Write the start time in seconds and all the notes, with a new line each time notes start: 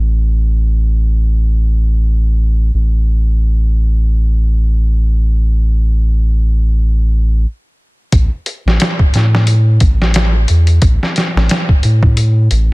Already playing: A1
2.74 A1
8.12 A1, kick, closed hi-hat
8.46 closed hi-hat
8.65 A1, snare
8.80 snare, closed hi-hat
8.99 kick
9.14 A2, snare, closed hi-hat
9.35 snare
9.47 closed hi-hat
9.80 A1, kick, closed hi-hat
10.02 snare
10.14 snare, closed hi-hat
10.48 E2, closed hi-hat
10.67 closed hi-hat
10.82 A1, kick, closed hi-hat
11.03 snare
11.16 snare, closed hi-hat
11.36 A1, snare
11.49 snare, closed hi-hat
11.69 kick
11.83 A2, closed hi-hat
12.03 kick
12.17 closed hi-hat
12.51 A1, closed hi-hat